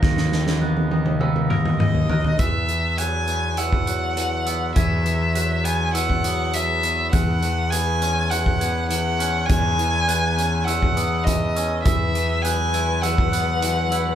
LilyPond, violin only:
\new Staff \with { instrumentName = "Violin" } { \time 4/4 \key e \lydian \tempo 4 = 102 r2. dis''4 | e''4 gis''4 fis''2 | e''4. gis''8 fis''4 e''4 | fis''4 gis''4 fis''4 fis''4 |
gis''2 fis''4 dis''4 | e''4 gis''4 fis''2 | }